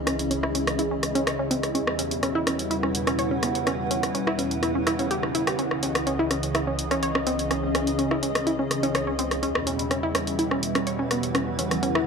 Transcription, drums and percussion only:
0.07 cross-stick, closed hi-hat
0.19 closed hi-hat
0.31 closed hi-hat, ride
0.43 cross-stick
0.54 closed hi-hat, ride
0.67 cross-stick, closed hi-hat
0.79 closed hi-hat
1.02 cross-stick, closed hi-hat, ride
1.15 snare, closed hi-hat
1.27 cross-stick, closed hi-hat
1.51 closed hi-hat, ride
1.63 cross-stick, closed hi-hat
1.74 closed hi-hat, ride
1.87 cross-stick
1.99 snare, closed hi-hat
2.11 closed hi-hat
2.23 cross-stick, closed hi-hat, ride
2.46 cross-stick, closed hi-hat, ride
2.59 closed hi-hat
2.71 closed hi-hat, ride
2.83 cross-stick
2.94 closed hi-hat, ride
3.07 cross-stick, snare, closed hi-hat
3.19 closed hi-hat, ride
3.43 cross-stick, closed hi-hat
3.55 closed hi-hat, ride
3.67 cross-stick, closed hi-hat
3.79 ride
3.91 closed hi-hat
4.03 cross-stick, closed hi-hat
4.15 closed hi-hat, ride
4.27 cross-stick
4.38 closed hi-hat, ride
4.51 closed hi-hat
4.63 cross-stick, closed hi-hat, ride
4.87 cross-stick, snare, closed hi-hat
4.99 snare, closed hi-hat
5.10 snare, closed hi-hat
5.23 cross-stick, snare, ride
5.35 closed hi-hat
5.47 cross-stick, closed hi-hat
5.59 closed hi-hat, ride
5.71 cross-stick
5.83 snare, closed hi-hat, ride
5.95 cross-stick, closed hi-hat
6.07 closed hi-hat, ride
6.31 cross-stick, closed hi-hat
6.43 closed hi-hat
6.54 cross-stick, closed hi-hat, ride
6.79 closed hi-hat, ride
6.90 cross-stick, snare, closed hi-hat
7.02 closed hi-hat, ride
7.15 cross-stick
7.27 closed hi-hat, ride
7.39 closed hi-hat, ride
7.51 cross-stick, closed hi-hat
7.63 ride
7.75 cross-stick, closed hi-hat
7.87 closed hi-hat
7.98 closed hi-hat, ride
8.11 cross-stick
8.22 closed hi-hat, ride
8.35 cross-stick, closed hi-hat
8.46 closed hi-hat, ride
8.59 ride
8.71 cross-stick, closed hi-hat
8.83 snare, closed hi-hat
8.95 cross-stick, closed hi-hat
9.18 closed hi-hat, ride
9.31 cross-stick, closed hi-hat
9.43 closed hi-hat, ride
9.55 cross-stick
9.66 snare, closed hi-hat, ride
9.79 closed hi-hat
9.90 cross-stick, closed hi-hat, ride
10.15 cross-stick, closed hi-hat, ride
10.27 closed hi-hat
10.39 closed hi-hat, ride
10.51 cross-stick
10.63 closed hi-hat, ride
10.74 cross-stick, snare, closed hi-hat
10.87 closed hi-hat, ride
11.11 cross-stick, closed hi-hat, ride
11.23 closed hi-hat, ride
11.34 cross-stick, closed hi-hat, ride
11.48 ride
11.59 closed hi-hat, ride
11.71 cross-stick, closed hi-hat
11.83 closed hi-hat, ride
11.95 cross-stick

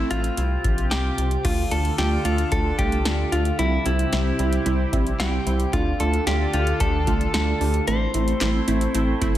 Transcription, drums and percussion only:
0.11 closed hi-hat
0.24 closed hi-hat
0.37 closed hi-hat
0.64 kick, closed hi-hat
0.78 closed hi-hat
0.91 snare, closed hi-hat
1.18 closed hi-hat
1.31 closed hi-hat
1.45 kick, closed hi-hat, crash
1.71 closed hi-hat
1.85 closed hi-hat
1.98 snare, closed hi-hat
2.25 closed hi-hat
2.38 closed hi-hat
2.52 kick, closed hi-hat
2.79 kick, closed hi-hat
2.92 closed hi-hat
3.05 snare, closed hi-hat
3.32 closed hi-hat
3.45 closed hi-hat
3.59 closed hi-hat
3.86 closed hi-hat
3.99 closed hi-hat
4.13 snare, closed hi-hat
4.39 closed hi-hat
4.53 closed hi-hat
4.66 closed hi-hat
4.93 kick, closed hi-hat
5.07 closed hi-hat
5.20 snare, closed hi-hat
5.47 closed hi-hat
5.60 closed hi-hat
5.73 kick, closed hi-hat
6.00 closed hi-hat
6.14 closed hi-hat
6.27 snare, closed hi-hat
6.53 closed hi-hat
6.67 closed hi-hat
6.80 kick, closed hi-hat
7.07 kick, closed hi-hat
7.21 closed hi-hat
7.34 snare, closed hi-hat
7.61 open hi-hat
7.74 closed hi-hat
7.87 closed hi-hat
8.14 closed hi-hat
8.28 closed hi-hat
8.41 snare, clap, closed hi-hat
8.68 closed hi-hat
8.81 closed hi-hat
8.95 closed hi-hat
9.22 kick, closed hi-hat

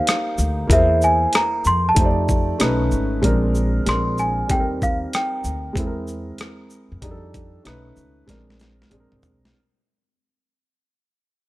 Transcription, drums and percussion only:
0.07 cross-stick, closed hi-hat
0.38 shaker
0.70 kick, closed hi-hat
1.02 shaker
1.33 cross-stick, closed hi-hat
1.65 shaker
1.96 kick, closed hi-hat
2.29 kick, shaker
2.60 cross-stick, closed hi-hat
2.91 shaker
3.23 kick, closed hi-hat
3.55 shaker
3.86 cross-stick, closed hi-hat
4.18 shaker
4.49 kick, closed hi-hat
4.82 kick, shaker
5.13 cross-stick, closed hi-hat
5.44 shaker
5.76 kick, closed hi-hat
6.07 shaker
6.38 cross-stick, closed hi-hat
6.70 shaker
7.02 kick, closed hi-hat
7.34 kick, closed hi-hat, shaker
7.65 cross-stick, closed hi-hat
7.96 shaker
8.28 kick, snare, closed hi-hat
8.50 snare
8.60 snare, closed hi-hat, shaker
8.82 snare
8.91 closed hi-hat, mid tom
9.12 mid tom
9.23 floor tom, shaker
9.45 snare

